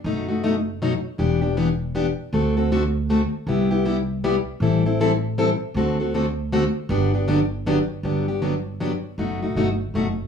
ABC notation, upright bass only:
X:1
M:3/4
L:1/8
Q:"Swing" 1/4=158
K:G
V:1 name="Upright bass" clef=bass
F,,,6 | E,,,6 | D,,6 | C,,6 |
A,,,6 | D,,6 | G,,,6 | G,,,6 |
F,,,2 G,,,2 F,,,2 |]